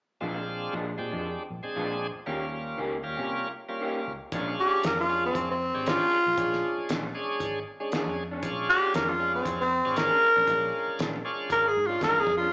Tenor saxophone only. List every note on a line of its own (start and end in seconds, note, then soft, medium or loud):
4.60 4.88 G4 medium
4.86 4.98 A#4 medium
5.00 5.24 F4 medium
5.25 5.49 C4 medium
5.51 5.90 C4 medium
5.88 6.87 F4 loud
8.69 8.94 G4 loud
8.95 9.11 A#4 medium
9.09 9.33 F4 medium
9.35 9.59 C4 medium
9.61 9.97 C4 medium
9.98 10.97 A#4 loud
11.52 11.70 A#4 medium
11.68 11.88 G#4 medium
11.86 12.02 F4 medium
12.03 12.21 A#4 loud
12.20 12.36 G#4 medium
12.37 12.53 F4 medium